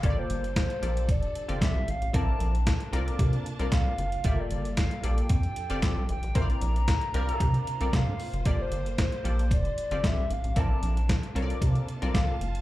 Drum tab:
HH |x-xxxxxxxxxxx-xx|x-xxxxxxxxxxx-xx|x-xxxxxxxxxxx-xx|xxxxxxxxxxxxx-ox|
CP |----x-------x---|----x-------x---|----x-------x---|----x-------x---|
SD |----o-------o---|----o-------o---|----o-------o---|----o-------o---|
BD |o---o---o---o---|o---o---o---o---|o---o---o---o---|o---o---o---o---|

HH |x-xxxxxxxxxxx-xx|x-xxxxxxxxxxx-xx|
CP |----x-------x---|----x-------x---|
SD |----o-------o---|----o-------o---|
BD |o---o---o---o---|o---o---o---o---|